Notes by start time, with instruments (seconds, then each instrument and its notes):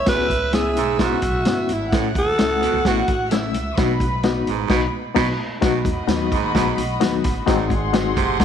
Already playing: string section E5 E6
0.06 upright bass C#2, baritone saxophone E2, reed electric piano B3 C#4 F#4, alto saxophone B4, kick, snare, closed hi-hat
0.30 kick, closed hi-hat
0.53 reed electric piano B3 C#4 E4, alto saxophone G#4, snare, closed hi-hat
0.76 upright bass B1, baritone saxophone G#2, closed hi-hat
0.99 baritone saxophone G#2, reed electric piano B3 C#4 E4, alto saxophone F#4, kick, snare, closed hi-hat
1.22 upright bass B1, kick, closed hi-hat
1.45 upright bass G1, reed electric piano B3 C#4 E4, snare, closed hi-hat
1.69 upright bass G#1, alto saxophone E4, closed hi-hat
1.92 upright bass A1, baritone saxophone A2, reed electric piano A3 C#4 E4, string section F#5 F#6, kick, snare, closed hi-hat
2.15 upright bass D#2, alto saxophone A4, kick, closed hi-hat
2.38 upright bass C#2, reed electric piano A3 C#4 E4, snare, closed hi-hat
2.62 baritone saxophone B2, closed hi-hat
2.74 upright bass C#2
2.84 upright bass A1, baritone saxophone B2, reed electric piano A3 C#4 E4, alto saxophone F#4, kick, snare, closed hi-hat
3.08 upright bass A1, kick, closed hi-hat
3.31 reed electric piano A3 C#4 E4, alto saxophone E4, string section E5 E6, snare, closed hi-hat
3.54 upright bass C#2, closed hi-hat
3.77 upright bass B1, baritone saxophone B2, reed electric piano B3 D#4 F#4, string section B4 B5, kick, snare, closed hi-hat
4.00 kick, closed hi-hat
4.23 reed electric piano B3 D#4 F#4, snare, closed hi-hat
4.47 upright bass A1, baritone saxophone G#2, closed hi-hat
4.70 upright bass B1, baritone saxophone B2, reed electric piano B3 D#4 F#4, string section B4 B5, kick, snare, crash
5.15 upright bass B1, baritone saxophone B2, reed electric piano B3 D#4 F#4, string section B4 B5, kick, snare, crash
5.61 upright bass B1, baritone saxophone B2, reed electric piano F#3 B3 D#4 F#4, string section F#4 D#5 B5, kick, snare, closed hi-hat
5.85 upright bass E2, kick, closed hi-hat
6.07 upright bass D#2, reed electric piano F#3 B3 D#4 F#4, snare, closed hi-hat
6.32 baritone saxophone G#2, kick, closed hi-hat
6.43 upright bass D#2
6.54 upright bass B1, baritone saxophone G#2, reed electric piano F#3 B3 D#4 F#4, kick, snare, closed hi-hat
6.77 upright bass B1, closed hi-hat
7.00 upright bass D#2, reed electric piano F#3 B3 D#4 F#4, snare, closed hi-hat
7.24 upright bass G1, kick, snare, closed hi-hat
7.46 upright bass G#1, baritone saxophone G#2, reed electric piano G#3 C4 D#4 F#4, string section G#4 F#5 C6, kick, snare, closed hi-hat
7.70 kick, closed hi-hat
7.93 reed electric piano G#3 C4 D#4 F#4, snare, closed hi-hat
8.16 upright bass F#1, baritone saxophone C3, kick, closed hi-hat
8.39 baritone saxophone C3, reed electric piano G#3 C4 D#4 F#4, kick, snare, closed hi-hat